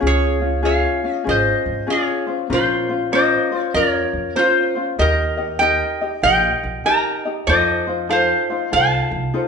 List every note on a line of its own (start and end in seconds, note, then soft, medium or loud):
0.00 0.83 C#2 medium
0.00 0.41 C#4 medium
0.00 0.40 F4 medium
0.00 0.40 G#4 medium
0.07 0.62 G#4 medium
0.07 0.65 C#5 medium
0.41 0.62 C#4 soft
0.41 0.62 F4 soft
0.63 1.03 C#4 medium
0.63 1.03 F4 medium
0.63 1.03 G#4 medium
0.63 1.23 C#5 medium
0.63 1.13 F5 medium
1.04 1.24 C#4 soft
1.04 1.25 F4 soft
1.13 1.28 D#5 medium
1.24 1.52 G#1 medium
1.24 1.87 C#4 medium
1.24 1.87 F4 medium
1.24 1.86 G#4 medium
1.24 1.90 C5 medium
1.29 1.86 C5 medium
1.29 1.91 D#5 medium
1.66 1.80 G#1 medium
1.87 2.27 C#4 medium
1.87 2.27 F4 medium
1.87 2.27 G#4 medium
1.87 2.36 C#5 medium
1.92 2.37 G#4 medium
2.27 2.49 C#4 soft
2.27 2.49 F4 soft
2.27 2.50 C5 soft
2.50 3.31 A#1 loud
2.50 2.89 C#4 medium
2.50 2.89 F4 medium
2.50 2.89 A#4 medium
2.50 2.88 C5 medium
2.50 3.14 C5 medium
2.54 3.10 F4 medium
2.89 3.12 C#4 soft
2.89 3.12 F4 soft
2.89 3.12 C5 medium
3.12 3.52 C#4 medium
3.12 3.52 F4 medium
3.12 3.51 A#4 medium
3.12 3.51 C5 medium
3.12 3.72 C5 medium
3.12 3.62 D#5 medium
3.52 3.75 C#4 soft
3.52 3.75 F4 medium
3.52 3.74 C5 medium
3.62 3.74 C#5 medium
3.74 4.00 F2 medium
3.74 4.35 C#4 medium
3.74 4.35 F4 medium
3.74 4.36 A#4 soft
3.74 4.33 A#4 medium
3.74 4.38 C#5 loud
4.13 4.28 F2 medium
4.36 4.76 C#4 medium
4.36 4.75 F4 medium
4.36 4.85 F4 medium
4.36 4.75 A#4 medium
4.36 4.83 C5 medium
4.36 4.74 C5 medium
4.75 4.98 C#4 soft
4.75 4.98 F4 soft
4.75 4.98 C5 medium
4.98 5.79 D#2 medium
4.98 5.38 D#4 medium
4.98 5.37 G4 medium
4.98 5.38 A#4 medium
4.98 5.58 A#4 medium
4.98 5.61 D#5 medium
4.98 5.36 D#5 medium
5.37 5.60 D#4 soft
5.37 5.60 G4 soft
5.37 5.60 D#5 medium
5.59 6.00 D#4 medium
5.59 6.00 G4 medium
5.59 6.00 A#4 medium
5.59 6.00 D#5 medium
5.59 6.20 D#5 medium
5.59 6.22 G5 loud
6.01 6.23 D#4 soft
6.01 6.22 G4 medium
6.01 6.23 D#5 medium
6.23 6.49 A#1 loud
6.23 6.85 D#4 soft
6.23 6.85 G4 medium
6.23 6.84 A#4 medium
6.23 6.86 D#5 medium
6.23 6.82 D#5 medium
6.23 6.85 G5 loud
6.63 6.78 A#1 medium
6.85 7.25 D#4 medium
6.85 7.25 G4 medium
6.85 7.25 A#4 medium
6.85 7.24 D#5 medium
6.85 7.45 G5 medium
6.85 7.49 A#5 loud
7.25 7.47 D#4 soft
7.25 7.48 G4 medium
7.25 7.48 D#5 medium
7.47 8.28 F2 medium
7.47 7.87 D#4 medium
7.47 7.88 F4 medium
7.47 7.87 A4 medium
7.47 7.86 C5 medium
7.47 8.06 C5 medium
7.47 8.11 D#5 loud
7.87 8.08 D#4 soft
7.87 8.09 F4 soft
7.87 8.10 C5 soft
8.09 8.49 D#4 medium
8.09 8.49 F4 medium
8.09 8.49 A4 medium
8.09 8.49 C5 loud
8.09 8.69 C5 medium
8.09 8.73 F5 medium
8.50 8.71 D#4 soft
8.50 8.72 F4 medium
8.50 8.72 C5 medium
8.72 8.98 C2 medium
8.72 9.33 D#4 medium
8.72 9.34 F4 medium
8.72 9.32 A4 medium
8.72 9.34 C5 medium
8.72 9.48 F5 medium
8.72 9.48 A5 loud
9.11 9.26 C2 medium
9.34 9.48 D#4 medium
9.34 9.48 F4 medium
9.34 9.48 A4 medium
9.34 9.48 C5 medium